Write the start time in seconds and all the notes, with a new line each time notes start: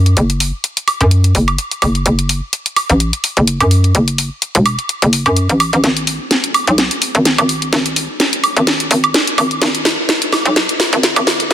Already playing: F#2
0.06 closed hi-hat
0.17 F#1, closed hi-hat
0.30 closed hi-hat
0.40 open hi-hat
0.64 closed hi-hat
0.77 closed hi-hat
0.88 open hi-hat, high woodblock
1.01 F#2, closed hi-hat
1.11 closed hi-hat
1.24 closed hi-hat
1.35 F#1, open hi-hat
1.48 closed hi-hat, high woodblock
1.58 closed hi-hat
1.71 closed hi-hat
1.82 F#1, open hi-hat, high woodblock
1.95 closed hi-hat
2.06 F#1, closed hi-hat
2.19 closed hi-hat
2.29 open hi-hat
2.53 closed hi-hat
2.66 closed hi-hat
2.76 open hi-hat, high woodblock
2.90 A1, closed hi-hat
3.00 closed hi-hat
3.13 closed hi-hat
3.24 open hi-hat
3.37 F#1, closed hi-hat
3.47 closed hi-hat
3.61 F#2, closed hi-hat, high woodblock
3.71 open hi-hat
3.84 closed hi-hat
3.95 F#1, closed hi-hat
4.08 closed hi-hat
4.18 open hi-hat
4.42 closed hi-hat
4.55 E1, closed hi-hat
4.66 open hi-hat, high woodblock
4.79 closed hi-hat
4.89 closed hi-hat
5.02 F#1, closed hi-hat
5.13 open hi-hat
5.26 F#2, closed hi-hat, high woodblock
5.37 closed hi-hat
5.49 A1, closed hi-hat
5.60 open hi-hat, high woodblock
5.73 A1, closed hi-hat
5.84 G#1, snare, closed hi-hat
5.97 closed hi-hat
6.07 open hi-hat
6.31 snare, closed hi-hat
6.44 closed hi-hat
6.54 open hi-hat, high woodblock
6.67 B1, closed hi-hat
6.78 snare, closed hi-hat
6.91 closed hi-hat
7.02 open hi-hat
7.15 G#1, closed hi-hat
7.25 snare, closed hi-hat
7.38 G#1, closed hi-hat, high woodblock
7.49 open hi-hat
7.62 closed hi-hat
7.73 G#1, snare, closed hi-hat
7.86 closed hi-hat
7.96 open hi-hat
8.20 snare, closed hi-hat
8.33 closed hi-hat
8.44 open hi-hat, high woodblock
8.57 G#1, closed hi-hat
8.67 snare, closed hi-hat
8.80 closed hi-hat
8.91 G#1, open hi-hat
9.04 closed hi-hat, high woodblock
9.14 snare, closed hi-hat
9.27 closed hi-hat
9.38 G#1, open hi-hat, high woodblock
9.51 closed hi-hat
9.62 G#1, snare, closed hi-hat
9.75 closed hi-hat
9.85 snare, open hi-hat
10.09 snare, closed hi-hat
10.22 closed hi-hat
10.32 snare, open hi-hat, high woodblock
10.45 B1, closed hi-hat
10.56 snare, closed hi-hat
10.69 closed hi-hat
10.80 snare, open hi-hat
10.93 G#1, closed hi-hat
11.03 snare, closed hi-hat
11.16 G#1, closed hi-hat, high woodblock
11.27 snare, open hi-hat
11.40 closed hi-hat